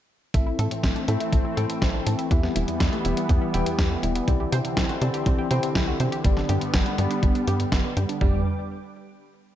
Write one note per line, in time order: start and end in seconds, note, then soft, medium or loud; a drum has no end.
0.34 0.53 A1 loud
0.34 6.21 E3 medium
0.34 0.45 A3 medium
0.34 2.29 A3 medium
0.34 1.05 C4 medium
0.34 2.29 C4 medium
0.34 1.05 E4 medium
0.34 1.05 A4 medium
0.34 1.05 E5 medium
0.34 kick loud
0.34 closed hi-hat medium
0.47 0.54 E4 medium
0.59 0.68 A2 medium
0.59 0.66 A4 loud
0.59 closed hi-hat medium
0.71 0.78 A2 medium
0.71 closed hi-hat medium
0.83 0.93 A1 medium
0.83 0.94 C4 medium
0.83 kick loud
0.83 snare loud
0.83 closed hi-hat medium
0.96 1.00 D4 medium
0.96 closed hi-hat soft
1.08 1.17 A2 medium
1.08 1.54 C4 medium
1.08 1.54 E4 medium
1.08 1.15 A4 medium
1.08 1.54 A4 medium
1.08 1.54 E5 medium
1.08 closed hi-hat medium
1.20 1.28 E4 medium
1.20 closed hi-hat medium
1.33 1.42 A1 medium
1.33 1.43 A3 medium
1.33 kick loud
1.33 closed hi-hat medium
1.45 1.52 E4 medium
1.57 1.66 A2 medium
1.57 2.28 C4 medium
1.57 2.28 E4 medium
1.57 1.64 A4 loud
1.57 2.28 A4 medium
1.57 2.28 G5 loud
1.57 closed hi-hat medium
1.69 1.77 A2 medium
1.69 closed hi-hat medium
1.82 2.00 A1 medium
1.82 1.93 C4 medium
1.82 kick loud
1.82 snare loud
1.82 closed hi-hat medium
1.94 1.98 D4 medium
2.06 2.16 A2 medium
2.06 2.14 A4 medium
2.06 closed hi-hat medium
2.19 2.26 E4 medium
2.19 closed hi-hat medium
2.31 2.49 E2 loud
2.31 2.42 E3 medium
2.31 4.26 G3 medium
2.31 3.02 B3 medium
2.31 4.26 B3 medium
2.31 3.02 E4 medium
2.31 3.02 G4 medium
2.31 3.02 E5 medium
2.31 kick loud
2.31 closed hi-hat medium
2.43 2.51 B3 medium
2.43 snare soft
2.56 2.65 E1 medium
2.56 2.63 E4 loud
2.56 closed hi-hat medium
2.68 2.75 E2 medium
2.68 closed hi-hat medium
2.80 2.89 E2 medium
2.80 2.91 G3 medium
2.80 kick loud
2.80 snare loud
2.80 closed hi-hat medium
2.92 2.97 A3 medium
2.92 closed hi-hat soft
3.05 3.14 E1 medium
3.05 3.51 B3 medium
3.05 3.12 E4 medium
3.05 3.51 E4 medium
3.05 3.51 G4 medium
3.05 3.51 E5 medium
3.05 closed hi-hat medium
3.17 3.24 B3 medium
3.17 closed hi-hat soft
3.29 3.39 E2 loud
3.29 3.40 E3 medium
3.29 kick loud
3.29 closed hi-hat medium
3.42 3.49 B3 medium
3.54 3.63 E1 medium
3.54 4.25 B3 medium
3.54 3.61 E4 loud
3.54 4.25 E4 medium
3.54 4.25 G4 medium
3.54 4.25 G5 loud
3.54 closed hi-hat medium
3.66 3.74 E2 medium
3.66 closed hi-hat medium
3.79 3.97 E2 loud
3.79 3.89 G3 medium
3.79 kick loud
3.79 snare loud
3.79 closed hi-hat medium
3.91 3.95 A3 medium
4.03 4.21 E1 medium
4.03 4.10 E4 medium
4.03 closed hi-hat medium
4.15 4.23 B3 medium
4.15 closed hi-hat soft
4.28 4.46 C2 medium
4.28 8.17 D3 medium
4.28 4.39 C4 medium
4.28 6.23 C4 medium
4.28 4.99 C4 medium
4.28 4.99 E4 medium
4.28 4.99 G4 medium
4.28 4.99 D5 medium
4.28 kick loud
4.28 closed hi-hat medium
4.40 4.47 G4 medium
4.52 4.62 C3 medium
4.52 4.60 C5 loud
4.52 closed hi-hat medium
4.65 4.72 C3 medium
4.65 closed hi-hat soft
4.77 4.86 C2 medium
4.77 4.88 E4 medium
4.77 kick loud
4.77 snare loud
4.77 closed hi-hat medium
4.89 4.94 F#4 medium
4.89 closed hi-hat soft
5.01 5.11 C3 loud
5.01 5.48 C4 medium
5.01 5.48 E4 medium
5.01 5.48 G4 medium
5.01 5.09 C5 medium
5.01 5.48 D5 medium
5.01 closed hi-hat medium
5.14 5.21 G4 medium
5.14 closed hi-hat soft
5.26 5.35 C2 loud
5.26 5.37 C4 medium
5.26 kick loud
5.26 closed hi-hat medium
5.39 5.46 G4 medium
5.51 5.60 C3 medium
5.51 6.22 C4 medium
5.51 6.22 E4 medium
5.51 6.22 G4 medium
5.51 5.58 C5 loud
5.51 6.22 G5 loud
5.51 closed hi-hat medium
5.63 5.70 C3 medium
5.63 closed hi-hat medium
5.75 5.94 C2 medium
5.75 5.86 E4 medium
5.75 kick loud
5.75 snare loud
5.75 closed hi-hat medium
5.88 5.92 F#4 medium
6.00 6.09 C3 medium
6.00 6.07 C5 medium
6.00 closed hi-hat medium
6.12 6.19 G4 medium
6.12 closed hi-hat soft
6.24 6.43 G1 medium
6.24 8.19 G3 medium
6.24 6.35 G3 medium
6.24 8.19 B3 medium
6.24 6.95 B3 medium
6.24 6.95 D4 medium
6.24 6.95 G4 medium
6.24 6.95 D5 medium
6.24 kick loud
6.24 closed hi-hat medium
6.37 6.44 D4 medium
6.37 snare soft
6.49 6.58 G2 medium
6.49 6.56 G4 loud
6.49 closed hi-hat medium
6.61 6.69 G2 medium
6.61 closed hi-hat soft
6.74 6.83 G1 medium
6.74 6.85 B3 medium
6.74 kick loud
6.74 snare loud
6.74 closed hi-hat medium
6.86 6.90 B3 medium
6.86 closed hi-hat soft
6.98 7.08 G2 medium
6.98 7.45 B3 medium
6.98 7.45 D4 medium
6.98 7.06 G4 medium
6.98 7.45 G4 medium
6.98 7.45 D5 medium
6.98 closed hi-hat medium
7.11 7.18 D4 medium
7.11 closed hi-hat soft
7.23 7.32 G1 loud
7.23 7.34 G3 medium
7.23 kick loud
7.23 closed hi-hat medium
7.35 7.42 D4 medium
7.35 closed hi-hat soft
7.47 7.66 G2 medium
7.47 7.55 G4 loud
7.47 closed hi-hat medium
7.60 7.67 G2 medium
7.60 closed hi-hat medium
7.72 7.81 G1 medium
7.72 7.83 B3 medium
7.72 kick loud
7.72 snare loud
7.72 closed hi-hat medium
7.84 7.89 B3 medium
7.97 8.06 G2 medium
7.97 8.04 G4 medium
7.97 closed hi-hat medium
8.09 8.16 D4 medium
8.09 closed hi-hat soft
8.21 8.44 G1 loud
8.21 8.44 G3 medium
8.21 8.40 B3 medium
8.21 8.44 D4 medium
8.21 8.40 D4 medium
8.21 8.40 G4 medium
8.21 8.44 B4 medium
8.21 8.40 D5 medium
8.21 8.44 G5 medium
8.21 8.44 D6 medium
8.21 kick loud
8.21 floor tom loud